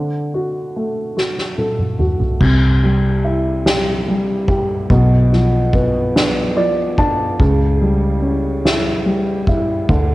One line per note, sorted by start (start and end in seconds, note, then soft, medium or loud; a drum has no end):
0.00 2.38 D3 medium
0.34 1.15 F#4 soft
0.76 2.38 A3 soft
1.17 1.97 F#4 soft
1.17 snare soft
1.38 snare soft
1.57 2.38 A4 soft
1.57 high tom medium
1.79 mid tom medium
1.99 2.39 F#4 soft
1.99 mid tom medium
2.20 floor tom medium
2.40 4.86 C2 loud
2.40 4.86 C3 medium
2.40 kick loud
2.40 crash medium
2.82 4.07 G3 soft
2.82 ride soft
3.24 4.86 E4 medium
3.24 ride soft
3.66 4.48 G4 soft
3.66 snare loud
3.66 ride medium
4.06 4.88 G3 medium
4.06 ride soft
4.48 4.90 G4 medium
4.48 kick medium
4.48 ride soft
4.90 7.36 B1 loud
4.90 7.36 B2 medium
4.90 kick loud
4.90 ride medium
5.32 6.55 F3 soft
5.32 snare soft
5.32 ride soft
5.73 7.36 B3 medium
5.73 kick medium
5.73 ride soft
6.16 6.97 D4 medium
6.16 snare loud
6.16 ride medium
6.56 7.37 F3 soft
6.56 6.95 D5 medium
6.56 ride soft
6.98 7.39 D4 medium
6.98 7.37 A5 medium
6.98 kick medium
6.98 ride soft
7.40 9.85 C#2 loud
7.40 9.85 C#3 medium
7.40 kick medium
7.40 ride medium
7.81 9.04 G3 medium
7.81 ride soft
8.22 9.85 C#4 medium
8.22 ride soft
8.65 9.47 E4 medium
8.65 snare loud
8.65 ride medium
9.05 9.87 G3 medium
9.05 ride soft
9.47 9.88 E4 medium
9.47 kick medium
9.47 ride soft
9.89 10.15 D2 loud
9.89 10.15 D3 medium
9.89 kick medium
9.89 ride medium